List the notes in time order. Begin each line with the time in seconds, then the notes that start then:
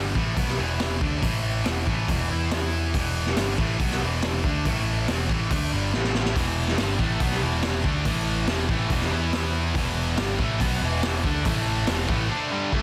Already playing: G1 G2 D3 G3
0.15 A1 A2 E3 A3, kick
0.36 B1 B2 F#3 B3, kick, open hi-hat
0.47 snare
0.57 E1 E2 B2 E3
0.80 snare, open hi-hat
1.00 D2 D3 A3 D4, kick
1.21 A1 A2 E3 A3, kick, open hi-hat
1.65 E1 E2 B2 E3, snare, open hi-hat
1.87 A1 A2 E3 A3, kick
2.08 E1 E2 B2 E3, kick, open hi-hat
2.30 E2 E3 B3 E4
2.51 snare, open hi-hat
2.94 E1 E2 B2 E3, kick, open hi-hat
3.26 snare
3.37 G1 G2 D3 G3, snare, open hi-hat
3.57 A1 A2 E3 A3, kick
3.79 B1 B2 F#3 B3, kick, open hi-hat
3.91 snare
4.01 E1 E2 B2 E3
4.22 snare, open hi-hat
4.44 D2 D3 A3 D4, kick
4.65 A1 A2 E3 A3, kick, open hi-hat
5.08 E1 E2 B2 E3, snare, open hi-hat
5.29 A1 A2 E3 A3, kick
5.50 D2 D3 A3 D4, kick, open hi-hat
5.72 G1 G2 D3 G3
5.92 A1 A2 E3 A3, snare
6.04 snare
6.14 snare
6.25 snare
6.35 E1 E2 B2 E3, kick, open hi-hat
6.68 snare
6.77 G1 G2 D3 G3, snare, open hi-hat
6.99 A1 A2 E3 A3, kick
7.20 B1 B2 F#3 B3, kick, open hi-hat
7.31 snare
7.41 E1 E2 B2 E3
7.63 snare, open hi-hat
7.84 D2 D3 A3 D4, kick
8.05 A1 A2 E3 A3, kick, open hi-hat
8.47 E1 E2 B2 E3, snare, open hi-hat
8.69 A1 A2 E3 A3, kick
8.90 E1 E2 B2 E3, kick, open hi-hat
9.01 snare
9.12 E2 E3 B3 E4
9.33 snare, open hi-hat
9.75 E1 E2 B2 E3, kick, open hi-hat
10.17 G1 G2 D3 G3, snare, open hi-hat
10.39 A1 A2 E3 A3, kick
10.60 B1 B2 F#3 B3, kick, open hi-hat
10.82 E1 E2 B2 E3
11.03 snare, open hi-hat
11.24 D2 D3 A3 D4, kick
11.45 A1 A2 E3 A3, kick, open hi-hat
11.87 E1 E2 B2 E3, snare, open hi-hat
12.08 A1 A2 E3 A3, kick
12.29 D3 A3 D4
12.50 G2 D3 G3
12.72 A2 E3 A3, kick